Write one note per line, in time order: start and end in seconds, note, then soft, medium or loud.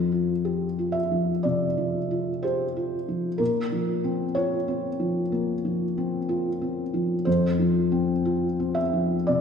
0.00 1.41 F2 soft
0.00 0.31 F3 soft
0.00 0.94 C5 soft
0.12 0.65 F4 soft
0.45 0.98 G4 soft
0.79 1.31 F4 soft
0.92 1.43 E5 medium
1.11 1.64 F3 soft
1.43 1.98 C3 soft
1.43 2.43 D5 soft
1.77 2.30 F3 soft
2.11 2.63 F4 soft
2.43 2.96 G4 soft
2.43 3.40 C5 medium
2.77 3.28 F4 soft
3.08 3.40 F3 soft
3.38 5.29 A#2 soft
3.38 4.35 A#4 medium
3.72 4.24 F3 soft
4.04 4.55 C4 soft
4.35 4.88 F4 soft
4.35 7.26 C#5 medium
4.68 5.20 C4 soft
5.00 5.52 F3 soft
5.32 5.84 A#3 soft
5.65 6.17 F3 soft
5.98 6.49 C4 soft
6.29 6.81 F4 soft
6.62 7.13 C4 soft
6.94 7.26 F3 soft
7.25 9.24 F2 soft
7.25 8.76 C5 medium
7.59 8.12 F3 soft
7.92 8.46 C4 soft
8.25 8.80 F4 soft
8.60 9.15 C4 soft
8.75 9.27 E5 medium
8.93 9.41 F3 soft
9.27 9.41 C3 soft
9.27 9.41 D5 medium